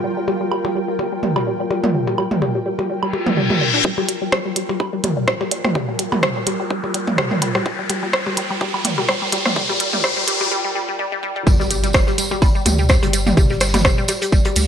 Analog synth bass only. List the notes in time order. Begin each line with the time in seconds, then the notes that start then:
0.04 G1
0.99 G1
1.23 D2
1.60 G1
1.94 G1
2.90 G1
3.26 D2
3.74 G1
11.47 G1
12.42 G1
12.66 D2
13.03 G1
13.37 G1
14.32 G1
14.56 D2